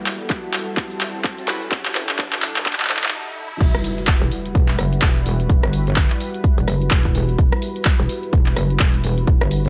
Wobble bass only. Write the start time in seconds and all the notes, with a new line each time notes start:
1.48 E1
1.95 F#1
2.33 E1
2.90 G1
3.61 E1
4.22 E1
4.55 E1
4.79 F#1
5.02 E1
5.50 E1
5.63 G1
6.58 E1
6.68 F#1
6.91 E1
7.38 E1
8.00 E1
8.33 E1
8.57 F#1
9.27 E1
9.41 G1